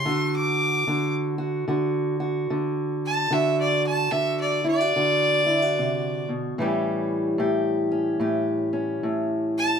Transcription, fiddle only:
0.00 0.33 C6 medium
0.36 1.14 D6 medium
3.06 3.35 A5 medium
3.33 3.59 E5 medium
3.60 3.86 D5 medium
3.87 4.13 A5 medium
4.11 4.39 E5 medium
4.40 4.67 D5 medium
4.68 6.27 D5 loud
9.58 9.80 A5 loud

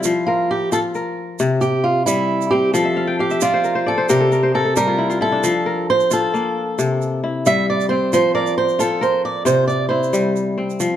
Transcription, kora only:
0.00 0.78 E4 medium
0.00 0.72 F4 medium
0.00 1.01 G4 medium
0.00 0.34 A4 medium
0.00 0.34 C5 medium
0.05 1.44 F3 medium
0.28 0.95 A#4 medium
0.72 2.23 F4 medium
0.95 2.22 A#4 medium
1.40 2.79 C3 medium
2.07 2.79 G3 medium
2.52 4.32 C4 medium
2.74 4.14 F3 medium
2.85 3.25 E5 medium
2.97 3.19 F5 medium
3.07 4.01 G5 medium
3.19 4.19 F5 medium
3.31 4.34 E5 medium
3.42 4.87 F4 medium
3.42 3.86 D5 medium
3.54 3.75 C5 medium
3.64 4.09 A#4 medium
3.75 3.97 C5 medium
3.86 4.97 D5 medium
3.98 4.43 C5 medium
4.09 5.48 C3 medium
4.09 4.31 A#4 medium
4.21 4.60 A4 medium
4.32 4.54 A#4 medium
4.43 5.62 C5 medium
4.54 5.66 A#4 medium
4.65 5.72 A4 medium
4.76 5.48 G3 medium
4.76 6.18 G4 medium
4.87 5.09 F4 medium
4.98 5.20 E4 medium
5.10 6.11 F4 medium
5.21 5.50 E4 medium
5.32 7.00 D4 medium
5.44 6.82 F3 medium
5.66 6.93 A#4 medium
6.11 7.30 F4 medium
6.34 8.27 A#3 medium
6.79 8.17 C3 medium
7.24 8.19 E4 medium
7.46 8.17 G3 medium
7.90 9.70 C4 medium
8.13 9.51 F3 medium
8.35 9.01 A#4 medium
8.79 9.96 F4 medium
9.01 10.28 A#4 medium
9.45 10.85 C3 medium
9.90 10.86 E4 medium
10.13 10.85 G3 medium
10.58 10.96 C4 medium
10.80 10.96 F3 medium

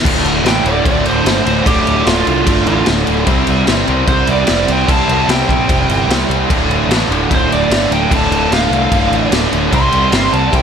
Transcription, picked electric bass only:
0.05 0.20 D1 loud
0.23 0.39 D1 medium
0.44 0.59 A1 loud
0.64 0.80 D1 loud
0.85 1.00 D1 medium
1.05 1.20 D1 medium
1.25 1.41 G1 medium
1.45 1.61 D1 loud
1.66 1.81 D1 loud
1.86 2.02 D1 loud
2.07 2.22 D1 loud
2.27 2.42 C2 loud
2.47 2.62 G1 medium
2.67 2.82 A1 medium
2.88 3.03 D1 medium
3.08 3.23 D1 medium
3.27 3.42 C2 loud
3.48 3.63 C2 medium
3.68 3.83 G1 loud
3.89 4.03 C2 loud
4.08 4.23 C2 medium
4.28 4.43 C2 medium
4.50 4.64 F1 medium
4.68 4.84 C2 medium
4.88 5.04 C2 loud
5.08 5.24 C2 loud
5.28 5.43 C2 medium
5.49 5.64 A#1 loud
5.69 5.84 F1 medium
5.88 6.04 G1 medium
6.08 6.24 C2 medium
6.29 6.44 C2 medium
6.50 6.65 D1 loud
6.68 6.84 D1 medium
6.88 7.04 A1 loud
7.09 7.25 D1 loud
7.31 7.46 D1 loud
7.49 7.65 D1 medium
7.70 7.86 G1 loud
7.90 8.05 D1 medium
8.11 8.26 D1 loud
8.29 8.45 D1 medium
8.51 8.66 D1 medium
8.70 8.86 C2 loud
8.91 9.07 G1 medium
9.10 9.26 A1 medium
9.31 9.46 D1 loud
9.52 9.68 D1 medium
9.73 9.88 C2 loud
9.92 10.08 C2 loud
10.12 10.28 G1 medium
10.32 10.48 C2 loud
10.53 10.62 C2 medium

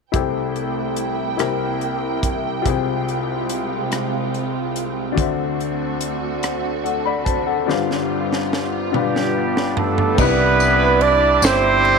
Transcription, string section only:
0.14 1.39 A3 soft
0.14 8.89 C4 soft
0.14 2.63 E4 soft
0.14 5.13 G5 medium
1.41 2.65 A#3 medium
2.66 5.15 C3 medium
2.66 5.15 G#3 soft
2.66 5.15 F4 soft
5.17 7.65 A3 medium
5.17 10.15 D4 medium
5.17 7.66 F#4 medium
7.68 8.91 G3 medium
7.68 10.16 F4 medium
8.93 10.17 G3 medium
8.93 10.17 B3 soft

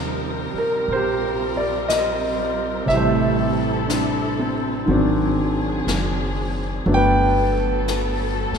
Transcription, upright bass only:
0.00 0.50 D#2 medium
0.54 muted upright bass stroke soft
0.88 2.84 A#1 medium
2.87 4.84 A1 medium
4.87 5.84 G#1 medium
5.87 6.83 F#1 medium
6.86 8.48 G1 medium
8.52 muted upright bass stroke soft

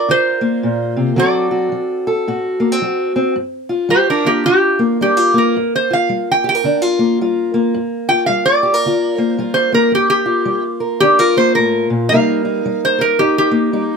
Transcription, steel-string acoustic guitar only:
0.00 1.15 A#4 medium
0.09 0.59 D3 medium
0.09 1.16 F4 medium
0.41 1.17 A#3 medium
0.63 0.97 A#2 medium
0.96 1.16 C3 medium
1.16 1.67 D3 medium
1.16 1.71 F#3 medium
1.16 2.59 C4 medium
1.16 1.50 F#4 medium
1.16 2.06 A4 medium
1.51 2.27 F#4 medium
1.72 2.23 F#3 medium
2.07 3.34 A4 medium
2.28 2.78 A2 medium
2.28 2.82 F#4 medium
2.60 2.72 A#3 medium
2.72 3.15 C4 soft
2.82 3.32 F#3 medium
2.82 3.34 F#4 medium
3.16 3.34 C4 medium
3.36 3.86 G2 medium
3.69 4.24 F4 medium
3.89 4.40 G3 medium
4.25 4.46 F4 medium
4.46 4.96 D3 medium
4.46 5.01 F4 medium
4.79 5.34 A#3 medium
5.01 5.51 G3 medium
5.01 5.17 D4 medium
5.17 5.55 F4 medium
5.34 6.99 A#3 medium
5.56 6.06 G2 medium
5.91 6.65 F4 medium
6.09 6.60 G3 medium
6.44 6.55 G4 medium
6.55 7.74 A#4 medium
6.64 7.14 D3 medium
6.64 6.82 D4 medium
6.82 7.19 F4 medium
6.99 7.54 A#3 medium
7.21 7.70 G3 medium
7.21 7.77 F4 medium
7.54 9.18 A#3 medium
7.74 8.24 G2 medium
8.09 8.87 F4 medium
8.29 8.79 G3 medium
8.63 8.74 G4 medium
8.74 9.92 A#4 medium
8.86 9.34 D3 medium
8.86 9.38 F4 medium
9.18 9.72 A#3 medium
9.38 9.88 G3 medium
9.38 9.90 F4 medium
9.72 11.36 A#3 medium
9.92 10.42 G2 medium
10.26 11.01 F4 medium
10.45 10.96 G3 medium
10.80 12.13 A#4 medium
11.01 11.51 D3 medium
11.01 11.19 D4 medium
11.19 12.11 F4 soft
11.37 12.12 A#3 medium
11.57 11.90 A2 medium
11.90 12.10 A#2 medium
12.11 12.61 C3 medium
12.11 12.65 G3 medium
12.11 13.51 A#3 medium
12.11 12.44 D#4 medium
12.11 12.98 A#4 medium
12.45 13.20 D#4 medium
12.65 13.16 G3 medium
12.99 13.97 A#4 medium
13.20 13.70 G2 medium
13.20 13.72 D#4 medium
13.51 13.97 A#3 medium
13.73 13.97 G3 medium
13.73 13.97 D#4 medium

